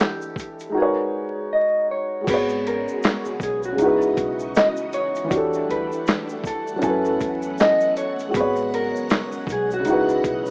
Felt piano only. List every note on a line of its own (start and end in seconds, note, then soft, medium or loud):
0.00 0.69 E3 medium
0.00 0.70 D4 soft
0.00 0.74 G4 soft
0.00 0.75 A4 medium
0.00 0.72 F#5 medium
0.69 2.19 G#3 medium
0.69 2.22 D#4 medium
0.74 2.23 F#4 medium
0.74 2.25 A#4 medium
0.79 2.26 B4 medium
0.79 2.27 C#5 medium
2.21 3.73 G#3 medium
2.21 3.74 F#4 medium
2.28 3.78 B3 medium
2.28 3.76 G#4 medium
2.34 3.79 C#5 medium
3.73 5.25 C#3 medium
3.73 5.26 G#3 medium
3.78 5.27 D#4 medium
3.78 5.28 E4 medium
3.83 5.29 F#4 medium
3.83 5.31 B4 medium
5.24 6.76 E3 medium
5.24 6.78 D4 medium
5.30 6.79 F#4 medium
5.30 6.81 G4 medium
5.37 6.83 A4 medium
6.76 8.28 F#3 medium
6.76 8.29 C#4 medium
6.82 8.31 E4 medium
6.82 8.32 G#5 medium
6.87 8.33 A4 medium
6.87 8.35 B4 medium
8.28 9.80 G#3 medium
8.28 9.81 F#4 medium
8.34 9.85 B3 medium
8.34 9.83 G#4 medium
8.41 9.86 C#5 medium
9.80 10.51 C#3 medium
9.80 10.51 G#3 medium
9.85 10.51 D#4 medium
9.85 10.51 E4 medium
9.90 10.51 F#4 medium
9.90 10.51 B4 medium